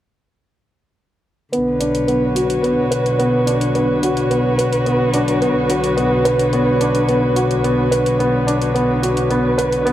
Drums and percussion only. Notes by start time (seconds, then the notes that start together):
1.53 closed hi-hat
1.81 closed hi-hat
1.95 closed hi-hat
2.08 closed hi-hat
2.36 closed hi-hat
2.50 closed hi-hat
2.64 closed hi-hat
2.92 closed hi-hat
3.06 closed hi-hat
3.20 closed hi-hat
3.47 closed hi-hat
3.61 closed hi-hat
3.75 closed hi-hat
4.03 closed hi-hat
4.17 closed hi-hat
4.31 closed hi-hat
4.59 closed hi-hat
4.73 closed hi-hat
4.86 closed hi-hat
5.14 closed hi-hat
5.28 closed hi-hat
5.42 closed hi-hat
5.70 closed hi-hat
5.84 closed hi-hat
5.98 closed hi-hat
6.25 closed hi-hat
6.39 closed hi-hat
6.53 closed hi-hat
6.81 closed hi-hat
6.95 closed hi-hat
7.09 closed hi-hat
7.36 closed hi-hat
7.51 closed hi-hat
7.64 closed hi-hat
7.92 closed hi-hat
8.06 closed hi-hat
8.20 closed hi-hat
8.48 closed hi-hat
8.62 closed hi-hat
8.76 closed hi-hat
9.03 closed hi-hat
9.17 closed hi-hat
9.31 closed hi-hat
9.59 closed hi-hat
9.72 closed hi-hat
9.87 closed hi-hat